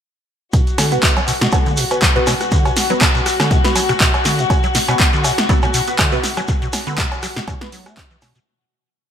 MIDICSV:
0, 0, Header, 1, 6, 480
1, 0, Start_track
1, 0, Key_signature, 2, "minor"
1, 0, Tempo, 495868
1, 517, Time_signature, 4, 2, 24, 8
1, 8812, End_track
2, 0, Start_track
2, 0, Title_t, "String section"
2, 0, Program_c, 0, 48
2, 515, Note_on_c, 0, 66, 82
2, 8206, Note_off_c, 0, 66, 0
2, 8812, End_track
3, 0, Start_track
3, 0, Title_t, "Synth stab"
3, 0, Program_c, 1, 62
3, 889, Note_on_c, 1, 59, 86
3, 889, Note_on_c, 1, 66, 77
3, 889, Note_on_c, 1, 71, 93
3, 1116, Note_off_c, 1, 59, 0
3, 1116, Note_off_c, 1, 66, 0
3, 1116, Note_off_c, 1, 71, 0
3, 1478, Note_on_c, 1, 59, 75
3, 1478, Note_on_c, 1, 66, 69
3, 1478, Note_on_c, 1, 69, 84
3, 1707, Note_off_c, 1, 59, 0
3, 1707, Note_off_c, 1, 66, 0
3, 1707, Note_off_c, 1, 69, 0
3, 1849, Note_on_c, 1, 59, 82
3, 1849, Note_on_c, 1, 66, 72
3, 1849, Note_on_c, 1, 71, 86
3, 1982, Note_off_c, 1, 59, 0
3, 1982, Note_off_c, 1, 66, 0
3, 1982, Note_off_c, 1, 71, 0
3, 2088, Note_on_c, 1, 71, 93
3, 2089, Note_on_c, 1, 59, 86
3, 2089, Note_on_c, 1, 66, 76
3, 2221, Note_off_c, 1, 71, 0
3, 2222, Note_off_c, 1, 59, 0
3, 2222, Note_off_c, 1, 66, 0
3, 2810, Note_on_c, 1, 59, 74
3, 2810, Note_on_c, 1, 66, 70
3, 2810, Note_on_c, 1, 71, 85
3, 2942, Note_off_c, 1, 59, 0
3, 2942, Note_off_c, 1, 66, 0
3, 2942, Note_off_c, 1, 71, 0
3, 3528, Note_on_c, 1, 59, 85
3, 3529, Note_on_c, 1, 66, 71
3, 3529, Note_on_c, 1, 71, 89
3, 3661, Note_off_c, 1, 59, 0
3, 3662, Note_off_c, 1, 66, 0
3, 3662, Note_off_c, 1, 71, 0
3, 4728, Note_on_c, 1, 59, 87
3, 4728, Note_on_c, 1, 66, 80
3, 4728, Note_on_c, 1, 71, 95
3, 4956, Note_off_c, 1, 59, 0
3, 4956, Note_off_c, 1, 66, 0
3, 4956, Note_off_c, 1, 71, 0
3, 5316, Note_on_c, 1, 69, 85
3, 5317, Note_on_c, 1, 59, 76
3, 5317, Note_on_c, 1, 66, 71
3, 5546, Note_off_c, 1, 59, 0
3, 5546, Note_off_c, 1, 66, 0
3, 5546, Note_off_c, 1, 69, 0
3, 5689, Note_on_c, 1, 59, 82
3, 5689, Note_on_c, 1, 66, 74
3, 5689, Note_on_c, 1, 71, 91
3, 5822, Note_off_c, 1, 59, 0
3, 5822, Note_off_c, 1, 66, 0
3, 5822, Note_off_c, 1, 71, 0
3, 5928, Note_on_c, 1, 59, 87
3, 5929, Note_on_c, 1, 66, 77
3, 5929, Note_on_c, 1, 71, 94
3, 6061, Note_off_c, 1, 59, 0
3, 6062, Note_off_c, 1, 66, 0
3, 6062, Note_off_c, 1, 71, 0
3, 6649, Note_on_c, 1, 59, 79
3, 6649, Note_on_c, 1, 66, 74
3, 6649, Note_on_c, 1, 71, 83
3, 6782, Note_off_c, 1, 59, 0
3, 6782, Note_off_c, 1, 66, 0
3, 6782, Note_off_c, 1, 71, 0
3, 7369, Note_on_c, 1, 59, 85
3, 7369, Note_on_c, 1, 66, 78
3, 7369, Note_on_c, 1, 71, 92
3, 7502, Note_off_c, 1, 59, 0
3, 7502, Note_off_c, 1, 66, 0
3, 7502, Note_off_c, 1, 71, 0
3, 8812, End_track
4, 0, Start_track
4, 0, Title_t, "Acid bass"
4, 0, Program_c, 2, 38
4, 518, Note_on_c, 2, 47, 77
4, 590, Note_off_c, 2, 47, 0
4, 758, Note_on_c, 2, 50, 79
4, 890, Note_on_c, 2, 47, 78
4, 904, Note_off_c, 2, 50, 0
4, 949, Note_off_c, 2, 47, 0
4, 1130, Note_on_c, 2, 54, 80
4, 1165, Note_off_c, 2, 54, 0
4, 1236, Note_on_c, 2, 47, 77
4, 1280, Note_off_c, 2, 47, 0
4, 1369, Note_on_c, 2, 47, 77
4, 1428, Note_off_c, 2, 47, 0
4, 1609, Note_on_c, 2, 50, 81
4, 1715, Note_on_c, 2, 47, 75
4, 1730, Note_off_c, 2, 50, 0
4, 1789, Note_off_c, 2, 47, 0
4, 1956, Note_on_c, 2, 54, 81
4, 2000, Note_off_c, 2, 54, 0
4, 2088, Note_on_c, 2, 47, 81
4, 2124, Note_off_c, 2, 47, 0
4, 2195, Note_on_c, 2, 47, 76
4, 2268, Note_off_c, 2, 47, 0
4, 2435, Note_on_c, 2, 50, 83
4, 2566, Note_on_c, 2, 47, 77
4, 2581, Note_off_c, 2, 50, 0
4, 2627, Note_off_c, 2, 47, 0
4, 2807, Note_on_c, 2, 54, 78
4, 2844, Note_off_c, 2, 54, 0
4, 2915, Note_on_c, 2, 47, 83
4, 2960, Note_off_c, 2, 47, 0
4, 3047, Note_on_c, 2, 47, 78
4, 3107, Note_off_c, 2, 47, 0
4, 3288, Note_on_c, 2, 50, 79
4, 3395, Note_on_c, 2, 47, 82
4, 3410, Note_off_c, 2, 50, 0
4, 3469, Note_off_c, 2, 47, 0
4, 3635, Note_on_c, 2, 54, 78
4, 3679, Note_off_c, 2, 54, 0
4, 3767, Note_on_c, 2, 47, 75
4, 3804, Note_off_c, 2, 47, 0
4, 3875, Note_on_c, 2, 47, 81
4, 3948, Note_off_c, 2, 47, 0
4, 4115, Note_on_c, 2, 50, 75
4, 4246, Note_on_c, 2, 47, 78
4, 4261, Note_off_c, 2, 50, 0
4, 4307, Note_off_c, 2, 47, 0
4, 4487, Note_on_c, 2, 54, 84
4, 4524, Note_off_c, 2, 54, 0
4, 4595, Note_on_c, 2, 47, 79
4, 4640, Note_off_c, 2, 47, 0
4, 4727, Note_on_c, 2, 47, 81
4, 4787, Note_off_c, 2, 47, 0
4, 4968, Note_on_c, 2, 50, 79
4, 5076, Note_on_c, 2, 47, 77
4, 5091, Note_off_c, 2, 50, 0
4, 5149, Note_off_c, 2, 47, 0
4, 5316, Note_on_c, 2, 54, 86
4, 5360, Note_off_c, 2, 54, 0
4, 5448, Note_on_c, 2, 47, 78
4, 5484, Note_off_c, 2, 47, 0
4, 5555, Note_on_c, 2, 47, 76
4, 5628, Note_off_c, 2, 47, 0
4, 5795, Note_on_c, 2, 50, 81
4, 5929, Note_on_c, 2, 47, 82
4, 5943, Note_off_c, 2, 50, 0
4, 5988, Note_off_c, 2, 47, 0
4, 6168, Note_on_c, 2, 54, 77
4, 6204, Note_off_c, 2, 54, 0
4, 6276, Note_on_c, 2, 47, 83
4, 6320, Note_off_c, 2, 47, 0
4, 6408, Note_on_c, 2, 47, 81
4, 6468, Note_off_c, 2, 47, 0
4, 6649, Note_on_c, 2, 50, 80
4, 6756, Note_on_c, 2, 47, 87
4, 6770, Note_off_c, 2, 50, 0
4, 6829, Note_off_c, 2, 47, 0
4, 6996, Note_on_c, 2, 54, 78
4, 7040, Note_off_c, 2, 54, 0
4, 7128, Note_on_c, 2, 47, 76
4, 7164, Note_off_c, 2, 47, 0
4, 7236, Note_on_c, 2, 47, 85
4, 7309, Note_off_c, 2, 47, 0
4, 7476, Note_on_c, 2, 54, 73
4, 7607, Note_on_c, 2, 57, 75
4, 7622, Note_off_c, 2, 54, 0
4, 7716, Note_on_c, 2, 62, 82
4, 7730, Note_off_c, 2, 57, 0
4, 7789, Note_off_c, 2, 62, 0
4, 7847, Note_on_c, 2, 52, 77
4, 7907, Note_off_c, 2, 52, 0
4, 7956, Note_on_c, 2, 47, 77
4, 8065, Note_off_c, 2, 47, 0
4, 8088, Note_on_c, 2, 47, 101
4, 8124, Note_off_c, 2, 47, 0
4, 8812, End_track
5, 0, Start_track
5, 0, Title_t, "Shekere"
5, 513, Note_on_c, 9, 82, 54
5, 609, Note_off_c, 9, 82, 0
5, 651, Note_on_c, 9, 82, 25
5, 748, Note_off_c, 9, 82, 0
5, 764, Note_on_c, 9, 82, 95
5, 861, Note_off_c, 9, 82, 0
5, 888, Note_on_c, 9, 82, 38
5, 984, Note_off_c, 9, 82, 0
5, 1000, Note_on_c, 9, 82, 53
5, 1097, Note_off_c, 9, 82, 0
5, 1132, Note_on_c, 9, 82, 25
5, 1229, Note_off_c, 9, 82, 0
5, 1236, Note_on_c, 9, 82, 87
5, 1332, Note_off_c, 9, 82, 0
5, 1367, Note_on_c, 9, 82, 39
5, 1464, Note_off_c, 9, 82, 0
5, 1470, Note_on_c, 9, 82, 58
5, 1567, Note_off_c, 9, 82, 0
5, 1607, Note_on_c, 9, 82, 24
5, 1703, Note_off_c, 9, 82, 0
5, 1711, Note_on_c, 9, 82, 86
5, 1808, Note_off_c, 9, 82, 0
5, 1850, Note_on_c, 9, 82, 37
5, 1947, Note_off_c, 9, 82, 0
5, 1956, Note_on_c, 9, 82, 60
5, 2052, Note_off_c, 9, 82, 0
5, 2086, Note_on_c, 9, 82, 23
5, 2182, Note_off_c, 9, 82, 0
5, 2196, Note_on_c, 9, 82, 90
5, 2293, Note_off_c, 9, 82, 0
5, 2329, Note_on_c, 9, 82, 43
5, 2425, Note_off_c, 9, 82, 0
5, 2434, Note_on_c, 9, 82, 55
5, 2531, Note_off_c, 9, 82, 0
5, 2574, Note_on_c, 9, 82, 28
5, 2671, Note_off_c, 9, 82, 0
5, 2679, Note_on_c, 9, 82, 93
5, 2775, Note_off_c, 9, 82, 0
5, 2812, Note_on_c, 9, 82, 42
5, 2909, Note_off_c, 9, 82, 0
5, 2917, Note_on_c, 9, 82, 50
5, 3014, Note_off_c, 9, 82, 0
5, 3045, Note_on_c, 9, 82, 28
5, 3142, Note_off_c, 9, 82, 0
5, 3160, Note_on_c, 9, 82, 92
5, 3256, Note_off_c, 9, 82, 0
5, 3295, Note_on_c, 9, 82, 41
5, 3392, Note_off_c, 9, 82, 0
5, 3395, Note_on_c, 9, 82, 50
5, 3492, Note_off_c, 9, 82, 0
5, 3529, Note_on_c, 9, 82, 28
5, 3626, Note_off_c, 9, 82, 0
5, 3639, Note_on_c, 9, 82, 105
5, 3736, Note_off_c, 9, 82, 0
5, 3767, Note_on_c, 9, 82, 45
5, 3864, Note_off_c, 9, 82, 0
5, 3875, Note_on_c, 9, 82, 60
5, 3972, Note_off_c, 9, 82, 0
5, 4010, Note_on_c, 9, 82, 27
5, 4107, Note_off_c, 9, 82, 0
5, 4114, Note_on_c, 9, 82, 91
5, 4211, Note_off_c, 9, 82, 0
5, 4247, Note_on_c, 9, 82, 42
5, 4343, Note_off_c, 9, 82, 0
5, 4360, Note_on_c, 9, 82, 56
5, 4456, Note_off_c, 9, 82, 0
5, 4486, Note_on_c, 9, 82, 29
5, 4583, Note_off_c, 9, 82, 0
5, 4596, Note_on_c, 9, 82, 96
5, 4693, Note_off_c, 9, 82, 0
5, 4727, Note_on_c, 9, 82, 37
5, 4824, Note_off_c, 9, 82, 0
5, 4833, Note_on_c, 9, 82, 50
5, 4929, Note_off_c, 9, 82, 0
5, 4972, Note_on_c, 9, 82, 30
5, 5069, Note_off_c, 9, 82, 0
5, 5075, Note_on_c, 9, 82, 107
5, 5172, Note_off_c, 9, 82, 0
5, 5210, Note_on_c, 9, 82, 46
5, 5307, Note_off_c, 9, 82, 0
5, 5319, Note_on_c, 9, 82, 58
5, 5416, Note_off_c, 9, 82, 0
5, 5443, Note_on_c, 9, 82, 30
5, 5540, Note_off_c, 9, 82, 0
5, 5558, Note_on_c, 9, 82, 101
5, 5655, Note_off_c, 9, 82, 0
5, 5681, Note_on_c, 9, 82, 45
5, 5777, Note_off_c, 9, 82, 0
5, 5796, Note_on_c, 9, 82, 59
5, 5893, Note_off_c, 9, 82, 0
5, 5924, Note_on_c, 9, 82, 26
5, 6021, Note_off_c, 9, 82, 0
5, 6044, Note_on_c, 9, 82, 98
5, 6141, Note_off_c, 9, 82, 0
5, 6166, Note_on_c, 9, 82, 40
5, 6263, Note_off_c, 9, 82, 0
5, 6271, Note_on_c, 9, 82, 61
5, 6368, Note_off_c, 9, 82, 0
5, 6415, Note_on_c, 9, 82, 27
5, 6512, Note_off_c, 9, 82, 0
5, 6513, Note_on_c, 9, 82, 106
5, 6610, Note_off_c, 9, 82, 0
5, 6655, Note_on_c, 9, 82, 43
5, 6752, Note_off_c, 9, 82, 0
5, 6757, Note_on_c, 9, 82, 58
5, 6853, Note_off_c, 9, 82, 0
5, 6895, Note_on_c, 9, 82, 26
5, 6991, Note_off_c, 9, 82, 0
5, 6994, Note_on_c, 9, 82, 101
5, 7091, Note_off_c, 9, 82, 0
5, 7130, Note_on_c, 9, 82, 41
5, 7227, Note_off_c, 9, 82, 0
5, 7243, Note_on_c, 9, 82, 53
5, 7340, Note_off_c, 9, 82, 0
5, 7366, Note_on_c, 9, 82, 27
5, 7463, Note_off_c, 9, 82, 0
5, 7478, Note_on_c, 9, 82, 89
5, 7574, Note_off_c, 9, 82, 0
5, 7616, Note_on_c, 9, 82, 39
5, 7713, Note_off_c, 9, 82, 0
5, 7718, Note_on_c, 9, 82, 54
5, 7815, Note_off_c, 9, 82, 0
5, 7851, Note_on_c, 9, 82, 27
5, 7948, Note_off_c, 9, 82, 0
5, 7953, Note_on_c, 9, 82, 92
5, 8050, Note_off_c, 9, 82, 0
5, 8083, Note_on_c, 9, 82, 45
5, 8179, Note_off_c, 9, 82, 0
5, 8812, End_track
6, 0, Start_track
6, 0, Title_t, "Drums"
6, 517, Note_on_c, 9, 36, 118
6, 517, Note_on_c, 9, 42, 56
6, 613, Note_off_c, 9, 36, 0
6, 614, Note_off_c, 9, 42, 0
6, 650, Note_on_c, 9, 42, 28
6, 747, Note_off_c, 9, 42, 0
6, 757, Note_on_c, 9, 38, 61
6, 757, Note_on_c, 9, 46, 109
6, 757, Note_on_c, 9, 56, 60
6, 854, Note_off_c, 9, 38, 0
6, 854, Note_off_c, 9, 46, 0
6, 854, Note_off_c, 9, 56, 0
6, 890, Note_on_c, 9, 42, 54
6, 987, Note_off_c, 9, 42, 0
6, 997, Note_on_c, 9, 36, 121
6, 998, Note_on_c, 9, 42, 51
6, 1000, Note_on_c, 9, 39, 121
6, 1093, Note_off_c, 9, 36, 0
6, 1095, Note_off_c, 9, 42, 0
6, 1097, Note_off_c, 9, 39, 0
6, 1129, Note_on_c, 9, 42, 28
6, 1129, Note_on_c, 9, 56, 58
6, 1226, Note_off_c, 9, 42, 0
6, 1226, Note_off_c, 9, 56, 0
6, 1237, Note_on_c, 9, 46, 98
6, 1334, Note_off_c, 9, 46, 0
6, 1369, Note_on_c, 9, 38, 81
6, 1369, Note_on_c, 9, 42, 54
6, 1466, Note_off_c, 9, 38, 0
6, 1466, Note_off_c, 9, 42, 0
6, 1476, Note_on_c, 9, 36, 113
6, 1477, Note_on_c, 9, 42, 57
6, 1477, Note_on_c, 9, 56, 59
6, 1573, Note_off_c, 9, 36, 0
6, 1573, Note_off_c, 9, 42, 0
6, 1573, Note_off_c, 9, 56, 0
6, 1610, Note_on_c, 9, 42, 30
6, 1707, Note_off_c, 9, 42, 0
6, 1717, Note_on_c, 9, 46, 108
6, 1814, Note_off_c, 9, 46, 0
6, 1850, Note_on_c, 9, 42, 56
6, 1850, Note_on_c, 9, 56, 55
6, 1946, Note_off_c, 9, 42, 0
6, 1946, Note_off_c, 9, 56, 0
6, 1956, Note_on_c, 9, 36, 117
6, 1957, Note_on_c, 9, 37, 75
6, 1957, Note_on_c, 9, 42, 55
6, 1959, Note_on_c, 9, 39, 125
6, 2053, Note_off_c, 9, 36, 0
6, 2054, Note_off_c, 9, 37, 0
6, 2054, Note_off_c, 9, 42, 0
6, 2056, Note_off_c, 9, 39, 0
6, 2090, Note_on_c, 9, 42, 26
6, 2187, Note_off_c, 9, 42, 0
6, 2197, Note_on_c, 9, 38, 57
6, 2197, Note_on_c, 9, 46, 91
6, 2197, Note_on_c, 9, 56, 56
6, 2294, Note_off_c, 9, 38, 0
6, 2294, Note_off_c, 9, 46, 0
6, 2294, Note_off_c, 9, 56, 0
6, 2330, Note_on_c, 9, 37, 63
6, 2330, Note_on_c, 9, 42, 58
6, 2427, Note_off_c, 9, 37, 0
6, 2427, Note_off_c, 9, 42, 0
6, 2436, Note_on_c, 9, 36, 116
6, 2438, Note_on_c, 9, 42, 54
6, 2533, Note_off_c, 9, 36, 0
6, 2534, Note_off_c, 9, 42, 0
6, 2570, Note_on_c, 9, 42, 27
6, 2570, Note_on_c, 9, 56, 62
6, 2667, Note_off_c, 9, 42, 0
6, 2667, Note_off_c, 9, 56, 0
6, 2677, Note_on_c, 9, 38, 60
6, 2677, Note_on_c, 9, 46, 111
6, 2774, Note_off_c, 9, 38, 0
6, 2774, Note_off_c, 9, 46, 0
6, 2809, Note_on_c, 9, 42, 54
6, 2906, Note_off_c, 9, 42, 0
6, 2916, Note_on_c, 9, 36, 123
6, 2916, Note_on_c, 9, 42, 51
6, 2916, Note_on_c, 9, 56, 56
6, 2918, Note_on_c, 9, 39, 123
6, 3013, Note_off_c, 9, 36, 0
6, 3013, Note_off_c, 9, 42, 0
6, 3013, Note_off_c, 9, 56, 0
6, 3015, Note_off_c, 9, 39, 0
6, 3049, Note_on_c, 9, 42, 27
6, 3145, Note_off_c, 9, 42, 0
6, 3156, Note_on_c, 9, 37, 80
6, 3156, Note_on_c, 9, 46, 94
6, 3253, Note_off_c, 9, 37, 0
6, 3253, Note_off_c, 9, 46, 0
6, 3289, Note_on_c, 9, 38, 81
6, 3289, Note_on_c, 9, 42, 51
6, 3289, Note_on_c, 9, 56, 60
6, 3385, Note_off_c, 9, 38, 0
6, 3385, Note_off_c, 9, 42, 0
6, 3385, Note_off_c, 9, 56, 0
6, 3396, Note_on_c, 9, 36, 125
6, 3396, Note_on_c, 9, 42, 59
6, 3493, Note_off_c, 9, 36, 0
6, 3493, Note_off_c, 9, 42, 0
6, 3528, Note_on_c, 9, 38, 81
6, 3528, Note_on_c, 9, 42, 28
6, 3625, Note_off_c, 9, 38, 0
6, 3625, Note_off_c, 9, 42, 0
6, 3636, Note_on_c, 9, 46, 104
6, 3636, Note_on_c, 9, 56, 62
6, 3732, Note_off_c, 9, 46, 0
6, 3732, Note_off_c, 9, 56, 0
6, 3768, Note_on_c, 9, 37, 76
6, 3768, Note_on_c, 9, 42, 55
6, 3865, Note_off_c, 9, 37, 0
6, 3865, Note_off_c, 9, 42, 0
6, 3876, Note_on_c, 9, 36, 119
6, 3876, Note_on_c, 9, 42, 53
6, 3878, Note_on_c, 9, 39, 127
6, 3973, Note_off_c, 9, 36, 0
6, 3973, Note_off_c, 9, 42, 0
6, 3975, Note_off_c, 9, 39, 0
6, 4008, Note_on_c, 9, 42, 27
6, 4008, Note_on_c, 9, 56, 60
6, 4105, Note_off_c, 9, 42, 0
6, 4105, Note_off_c, 9, 56, 0
6, 4116, Note_on_c, 9, 38, 62
6, 4116, Note_on_c, 9, 46, 96
6, 4213, Note_off_c, 9, 38, 0
6, 4213, Note_off_c, 9, 46, 0
6, 4249, Note_on_c, 9, 42, 54
6, 4346, Note_off_c, 9, 42, 0
6, 4356, Note_on_c, 9, 36, 123
6, 4357, Note_on_c, 9, 42, 51
6, 4357, Note_on_c, 9, 56, 63
6, 4453, Note_off_c, 9, 36, 0
6, 4454, Note_off_c, 9, 42, 0
6, 4454, Note_off_c, 9, 56, 0
6, 4489, Note_on_c, 9, 42, 26
6, 4586, Note_off_c, 9, 42, 0
6, 4597, Note_on_c, 9, 38, 66
6, 4597, Note_on_c, 9, 46, 119
6, 4693, Note_off_c, 9, 38, 0
6, 4693, Note_off_c, 9, 46, 0
6, 4728, Note_on_c, 9, 42, 52
6, 4728, Note_on_c, 9, 56, 63
6, 4825, Note_off_c, 9, 42, 0
6, 4825, Note_off_c, 9, 56, 0
6, 4836, Note_on_c, 9, 36, 127
6, 4836, Note_on_c, 9, 42, 50
6, 4838, Note_on_c, 9, 39, 117
6, 4933, Note_off_c, 9, 36, 0
6, 4933, Note_off_c, 9, 42, 0
6, 4934, Note_off_c, 9, 39, 0
6, 4969, Note_on_c, 9, 42, 26
6, 5066, Note_off_c, 9, 42, 0
6, 5076, Note_on_c, 9, 46, 97
6, 5076, Note_on_c, 9, 56, 64
6, 5173, Note_off_c, 9, 46, 0
6, 5173, Note_off_c, 9, 56, 0
6, 5209, Note_on_c, 9, 38, 81
6, 5209, Note_on_c, 9, 42, 51
6, 5306, Note_off_c, 9, 38, 0
6, 5306, Note_off_c, 9, 42, 0
6, 5316, Note_on_c, 9, 36, 127
6, 5317, Note_on_c, 9, 42, 57
6, 5413, Note_off_c, 9, 36, 0
6, 5413, Note_off_c, 9, 42, 0
6, 5449, Note_on_c, 9, 42, 27
6, 5449, Note_on_c, 9, 56, 64
6, 5546, Note_off_c, 9, 42, 0
6, 5546, Note_off_c, 9, 56, 0
6, 5556, Note_on_c, 9, 46, 109
6, 5653, Note_off_c, 9, 46, 0
6, 5688, Note_on_c, 9, 42, 53
6, 5785, Note_off_c, 9, 42, 0
6, 5796, Note_on_c, 9, 37, 75
6, 5796, Note_on_c, 9, 42, 54
6, 5796, Note_on_c, 9, 56, 64
6, 5797, Note_on_c, 9, 36, 120
6, 5798, Note_on_c, 9, 39, 125
6, 5893, Note_off_c, 9, 36, 0
6, 5893, Note_off_c, 9, 37, 0
6, 5893, Note_off_c, 9, 42, 0
6, 5893, Note_off_c, 9, 56, 0
6, 5895, Note_off_c, 9, 39, 0
6, 5929, Note_on_c, 9, 42, 26
6, 6026, Note_off_c, 9, 42, 0
6, 6036, Note_on_c, 9, 38, 60
6, 6036, Note_on_c, 9, 46, 98
6, 6133, Note_off_c, 9, 38, 0
6, 6133, Note_off_c, 9, 46, 0
6, 6168, Note_on_c, 9, 37, 60
6, 6168, Note_on_c, 9, 42, 51
6, 6168, Note_on_c, 9, 56, 63
6, 6265, Note_off_c, 9, 37, 0
6, 6265, Note_off_c, 9, 42, 0
6, 6265, Note_off_c, 9, 56, 0
6, 6276, Note_on_c, 9, 42, 48
6, 6277, Note_on_c, 9, 36, 118
6, 6372, Note_off_c, 9, 42, 0
6, 6373, Note_off_c, 9, 36, 0
6, 6408, Note_on_c, 9, 42, 26
6, 6505, Note_off_c, 9, 42, 0
6, 6516, Note_on_c, 9, 38, 66
6, 6516, Note_on_c, 9, 46, 113
6, 6516, Note_on_c, 9, 56, 65
6, 6612, Note_off_c, 9, 38, 0
6, 6612, Note_off_c, 9, 46, 0
6, 6612, Note_off_c, 9, 56, 0
6, 6648, Note_on_c, 9, 42, 52
6, 6745, Note_off_c, 9, 42, 0
6, 6756, Note_on_c, 9, 42, 51
6, 6757, Note_on_c, 9, 36, 120
6, 6758, Note_on_c, 9, 39, 118
6, 6853, Note_off_c, 9, 42, 0
6, 6854, Note_off_c, 9, 36, 0
6, 6855, Note_off_c, 9, 39, 0
6, 6889, Note_on_c, 9, 42, 26
6, 6889, Note_on_c, 9, 56, 64
6, 6986, Note_off_c, 9, 42, 0
6, 6986, Note_off_c, 9, 56, 0
6, 6997, Note_on_c, 9, 37, 81
6, 6997, Note_on_c, 9, 46, 96
6, 7094, Note_off_c, 9, 37, 0
6, 7094, Note_off_c, 9, 46, 0
6, 7129, Note_on_c, 9, 38, 88
6, 7129, Note_on_c, 9, 42, 53
6, 7226, Note_off_c, 9, 38, 0
6, 7226, Note_off_c, 9, 42, 0
6, 7237, Note_on_c, 9, 36, 122
6, 7237, Note_on_c, 9, 42, 55
6, 7237, Note_on_c, 9, 56, 70
6, 7333, Note_off_c, 9, 42, 0
6, 7333, Note_off_c, 9, 56, 0
6, 7334, Note_off_c, 9, 36, 0
6, 7369, Note_on_c, 9, 38, 90
6, 7369, Note_on_c, 9, 42, 27
6, 7466, Note_off_c, 9, 38, 0
6, 7466, Note_off_c, 9, 42, 0
6, 7477, Note_on_c, 9, 46, 110
6, 7574, Note_off_c, 9, 46, 0
6, 7610, Note_on_c, 9, 37, 78
6, 7610, Note_on_c, 9, 42, 53
6, 7610, Note_on_c, 9, 56, 67
6, 7707, Note_off_c, 9, 37, 0
6, 7707, Note_off_c, 9, 42, 0
6, 7707, Note_off_c, 9, 56, 0
6, 7717, Note_on_c, 9, 36, 122
6, 7717, Note_on_c, 9, 42, 54
6, 7719, Note_on_c, 9, 39, 116
6, 7814, Note_off_c, 9, 36, 0
6, 7814, Note_off_c, 9, 42, 0
6, 7816, Note_off_c, 9, 39, 0
6, 7850, Note_on_c, 9, 42, 24
6, 7946, Note_off_c, 9, 42, 0
6, 7957, Note_on_c, 9, 38, 64
6, 7957, Note_on_c, 9, 46, 101
6, 7957, Note_on_c, 9, 56, 64
6, 8054, Note_off_c, 9, 38, 0
6, 8054, Note_off_c, 9, 46, 0
6, 8054, Note_off_c, 9, 56, 0
6, 8090, Note_on_c, 9, 42, 52
6, 8186, Note_off_c, 9, 42, 0
6, 8812, End_track
0, 0, End_of_file